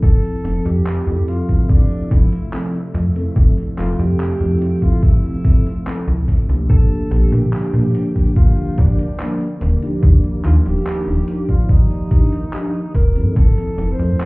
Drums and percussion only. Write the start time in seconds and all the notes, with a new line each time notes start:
0.03 kick, closed hi-hat
0.25 closed hi-hat
0.45 closed hi-hat
0.66 closed hi-hat
0.86 clap, closed hi-hat
1.08 closed hi-hat
1.28 closed hi-hat
1.49 kick, closed hi-hat
1.69 kick, closed hi-hat
1.91 closed hi-hat
2.11 kick, closed hi-hat
2.33 closed hi-hat
2.53 clap, closed hi-hat
2.75 closed hi-hat
2.95 closed hi-hat
3.16 closed hi-hat
3.36 kick, closed hi-hat
3.58 closed hi-hat
3.78 clap, closed hi-hat
4.00 closed hi-hat
4.20 clap, closed hi-hat
4.41 closed hi-hat
4.62 closed hi-hat
4.82 kick, closed hi-hat
5.03 kick, closed hi-hat
5.25 closed hi-hat
5.45 kick, closed hi-hat
5.66 closed hi-hat
5.87 clap, closed hi-hat
6.08 closed hi-hat
6.28 kick, closed hi-hat
6.50 closed hi-hat
6.70 kick, closed hi-hat
6.91 closed hi-hat
7.11 closed hi-hat
7.33 closed hi-hat
7.53 clap, closed hi-hat
7.74 closed hi-hat
7.95 closed hi-hat
8.16 kick, closed hi-hat
8.36 kick, closed hi-hat
8.57 closed hi-hat
8.78 kick, closed hi-hat
8.99 closed hi-hat
9.19 clap, closed hi-hat
9.41 closed hi-hat
9.61 closed hi-hat
9.82 closed hi-hat
10.03 kick, closed hi-hat
10.24 closed hi-hat
10.45 clap, closed hi-hat
10.66 closed hi-hat
10.87 clap, closed hi-hat
11.08 closed hi-hat
11.28 closed hi-hat
11.49 kick, closed hi-hat
11.69 kick, closed hi-hat
11.91 closed hi-hat
12.11 kick, closed hi-hat
12.33 closed hi-hat
12.53 clap, closed hi-hat
12.75 closed hi-hat
12.94 kick, closed hi-hat
13.16 closed hi-hat
13.36 kick, closed hi-hat, cabasa
13.58 closed hi-hat
13.78 closed hi-hat, cabasa
13.99 closed hi-hat, cabasa
14.20 clap, closed hi-hat